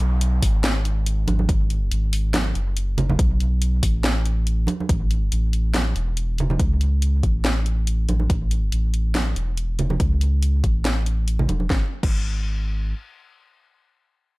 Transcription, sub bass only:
0.00 0.41 B1 loud
0.42 1.26 G#1 medium
1.28 1.47 G#1 loud
1.49 1.90 G#1 medium
1.91 2.54 G#1 medium
2.55 3.18 F#1 medium
3.19 3.81 B1 medium
3.83 4.66 A1 loud
4.89 5.30 A1 medium
5.32 5.94 A1 medium
5.96 6.58 E1 medium
6.60 7.22 C#2 medium
7.23 8.07 A1 medium
8.08 8.28 A1 medium
8.30 8.71 A1 medium
8.72 9.35 A1 medium
9.36 9.98 E1 medium
10.00 10.62 C#2 loud
10.64 11.47 A1 loud
11.49 11.69 E1 medium
11.70 11.83 G#1 medium
12.03 12.94 G#1 medium

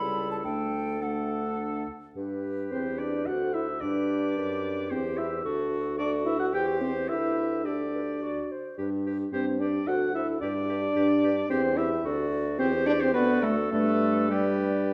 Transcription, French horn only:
0.00 0.43 G3 soft
0.45 1.01 A3 soft
1.02 1.86 A3 soft
2.72 3.01 C4 medium
3.00 3.28 D4 soft
3.27 3.54 F#4 medium
3.54 3.67 E4 medium
3.82 4.88 D4 medium
4.91 5.03 C4 medium
5.18 5.30 E4 medium
5.99 6.24 D4 medium
6.26 6.39 E4 medium
6.41 6.55 F#4 medium
6.53 6.80 G4 medium
6.81 6.93 C4 medium
7.09 7.67 E4 medium
7.65 8.50 D4 medium
9.33 9.62 C4 medium
9.60 9.89 D4 medium
9.88 10.14 F#4 medium
10.15 10.41 E4 medium
10.41 11.48 D4 medium
11.50 11.78 C4 medium
11.77 12.05 E4 medium
12.59 12.71 C4 medium
12.86 12.93 D4 loud
13.01 13.13 C4 medium
13.14 13.42 B3 medium
13.43 13.56 A3 medium
13.71 14.31 A3 medium
14.30 14.93 G3 medium

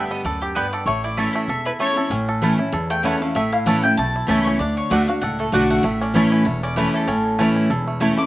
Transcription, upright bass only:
0.24 0.65 D2 medium
0.86 1.26 A1 medium
1.48 1.68 E1 medium
2.10 2.51 A1 medium
2.73 3.13 E2 loud
3.35 3.55 A1 medium
3.66 3.93 A1 medium
3.98 4.24 B1 medium
4.29 4.55 C#2 medium
4.60 4.80 D2 medium
4.91 5.17 D2 medium
5.22 5.49 C#2 medium
5.53 5.80 B1 medium
5.84 6.24 A1 medium
6.46 6.86 E1 medium
7.08 7.48 A1 medium
7.70 8.10 E1 medium

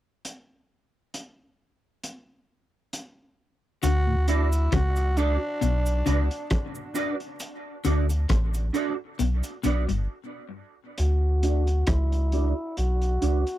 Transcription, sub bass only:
3.84 4.68 D2 loud
4.74 5.38 C#2 loud
5.63 6.03 B1 loud
6.08 6.29 C#2 loud
7.86 8.26 D2 medium
8.31 8.71 A1 loud
9.20 9.42 B1 medium
9.65 9.87 B1 medium
9.90 10.08 G1 medium
10.99 11.84 D2 loud
11.89 12.53 C#2 loud
12.78 13.18 B1 medium
13.23 13.45 C#2 medium

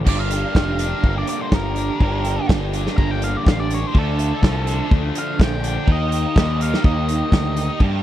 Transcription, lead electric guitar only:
0.09 0.19 D5 medium
0.19 1.13 F5 loud
1.18 1.28 D5 medium
1.29 1.40 D5 medium
1.42 1.54 C5 medium
1.54 2.47 A#4 medium
2.97 3.11 A#5 loud
3.11 3.22 G5 medium
3.24 3.37 F5 medium
3.37 3.49 D5 medium
3.49 3.60 F5 medium
3.60 3.71 D5 medium
3.74 3.87 C#5 medium
3.87 3.98 C5 medium
3.98 4.90 A4 medium
5.19 5.44 F5 medium
5.44 5.65 G5 medium
5.68 5.89 G5 medium
5.92 6.60 D#5 medium
6.62 6.85 F5 medium
6.85 7.78 D#5 medium

